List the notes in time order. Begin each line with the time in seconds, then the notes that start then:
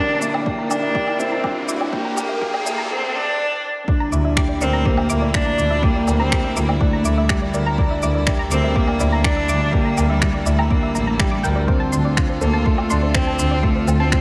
Already playing: A#2 D3 G3 D4 E4 G4 A#4, riser
0.10 E5
0.21 D2 A#3 E4 D6, shaker
0.34 D5, low woodblock
0.46 G4 D5, kick
0.59 A#5
0.70 D2 D4 A#4 D6, low woodblock, shaker
0.83 E5
0.95 G4 D6, kick
1.07 D5, low woodblock
1.19 D2 C4 E4 D5, shaker
1.32 A#5
1.43 D4 D6, kick, low woodblock
1.56 E5
1.68 D2 E4 D6, shaker
1.81 D5, low woodblock
1.93 A#3 G4 D5, kick
2.05 A#5
2.17 D2 A#4 D6, low woodblock, shaker
2.29 E5
2.41 A#3 G4 D6, kick
2.54 D5, low woodblock
2.66 D2 E4 D5, shaker
2.78 A#5
2.92 C4
3.16 D4
3.88 A#2 D3 G3 D4 E4 D5, kick
4.00 A#5
4.12 D2 E4 D6, shaker
4.25 E5
4.37 G4 D6, finger snap, kick
4.49 D5
4.61 D2 C4 A#4 D5, shaker
4.73 A#5
4.85 A#3 G4 D6, kick
4.97 E5, low woodblock
5.09 D2 E4 D6, shaker
5.22 D5
5.34 D4 D5, finger snap, kick
5.46 A#5
5.58 D2 E4 D6, shaker
5.70 E5
5.83 A#3 G4 D6, kick
5.95 D5
6.07 D2 A#4 D5, low woodblock, shaker
6.19 C4 A#5
6.32 G4 D6, finger snap, kick
6.44 E5
6.56 D2 A#3 E4 D6, shaker
6.69 D5, low woodblock
6.80 A3 D4 D5, kick
6.93 A#5
7.05 D2 E4 D6, shaker
7.18 E5
7.29 G3 G4 D6, finger snap, kick
7.42 D5
7.54 D2 A#4 D5, shaker
7.66 A#5
7.78 D4 A4 D6, kick
7.90 E5
8.02 D2 E4 D6, shaker
8.15 D5
8.27 G4 D5, finger snap, kick
8.39 A#5
8.51 D2 C4 A#4 D6, shaker
8.64 E5
8.76 A#3 G4 D6, kick
8.88 D5, low woodblock
9.00 D2 E4 D5, shaker
9.12 A#5
9.24 D4 D6, finger snap, kick
9.36 E5
9.49 D2 E4 D6, shaker
9.61 D5
9.72 A#3 G4 D5, kick
9.85 A#5
9.97 D2 A#4 D6, low woodblock, shaker
10.09 G3 E5
10.22 G4 D6, finger snap, kick
10.34 D5
10.45 D2 A3 E4 D5, shaker
10.59 A#5, low woodblock
10.70 A#3 D4 D6, kick
10.83 E5
10.95 A1 E4 A#5, shaker
11.07 A#5
11.19 G3 G4 D6, finger snap, kick
11.31 D6
11.43 D2 A#4 G5, shaker
11.56 D5
11.68 C4 F4 C5, kick
11.80 A5
11.92 D2 D4 C6, shaker
12.05 D5
12.17 F4 C6, finger snap, kick
12.29 C5
12.41 D2 A#3 A4 C5, shaker
12.53 A5
12.66 A3 F4 C6, kick
12.78 D5, low woodblock
12.90 D2 D4 C6, shaker
13.02 C5
13.14 C4 C5, finger snap, kick
13.27 A5
13.39 D2 D4 C6, shaker
13.51 D5
13.63 A3 F4 C6, kick
13.75 C5
13.87 D2 A4 C5, low woodblock, shaker
13.99 C4 A5
14.12 F4 C6, finger snap, kick